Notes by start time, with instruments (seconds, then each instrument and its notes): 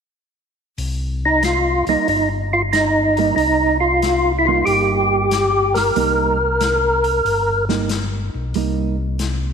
0.78 tonewheel organ C2, open hi-hat
1.25 tonewheel organ D#4
1.43 tonewheel organ F4, snare, closed hi-hat
1.87 tonewheel organ C2 D#4, hollow-body jazz guitar G3 A#3 D#4, open hi-hat
2.07 tonewheel organ G1 D#4, open hi-hat
2.53 tonewheel organ F4
2.73 tonewheel organ D#4, snare, closed hi-hat
3.17 hollow-body jazz guitar G3 A#3 D#4, open hi-hat
3.36 tonewheel organ C2 D#4, open hi-hat
3.80 tonewheel organ F4
4.02 snare, closed hi-hat
4.39 tonewheel organ E4
4.45 hollow-body jazz guitar G3 A#3 D#4, tonewheel organ F4
4.65 tonewheel organ G1 G4, open hi-hat
5.31 snare, closed hi-hat
5.74 tonewheel organ A#4, snare, open hi-hat
5.96 tonewheel organ C2, hollow-body jazz guitar G3 A#3 D#4, open hi-hat
6.61 snare, closed hi-hat
7.04 open hi-hat
7.25 tonewheel organ G1, open hi-hat
7.69 hollow-body jazz guitar G3 A#3 D#4, snare
7.89 snare, closed hi-hat
8.34 tonewheel organ B1
8.54 tonewheel organ C2, hollow-body jazz guitar G3 A#3 D#4, open hi-hat
9.19 snare, closed hi-hat